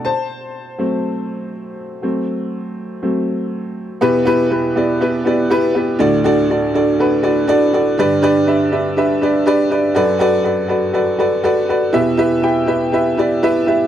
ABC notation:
X:1
M:4/4
L:1/8
Q:1/4=121
K:Em
V:1 name="Upright piano"
[ca]6 z2 | z8 | [B,EGB] [B,EGB] [B,EGB] [B,EGd] [B,EGB] [B,EGd] [B,EGB] [B,EGB] | [DFAd] [DFAd] [DFAd] [DFAd] [DFAB] [DFAd] [DFAd] [DFAd] |
[DGBd] [DGBd] [DGBe] [DGBe] [DGBe] [DGBd] [DGBd] [DGBd] | [FABd] [FABd] [FABd] [FABd] [FABd] [FABd] [FABd] [FABd] | [EGBe] [EGBe] [EGBg] [EGBe] [EGBe] [EGBd] [EGBe] [EGBe] |]
V:2 name="Upright piano" clef=bass
z3 [F,A,C] z4 | [F,A,C]4 [F,A,C] z3 | [E,,B,,]8 | [D,,A,,]8 |
[G,,D,]8 | [F,,F,]8 | [E,,B,,]8 |]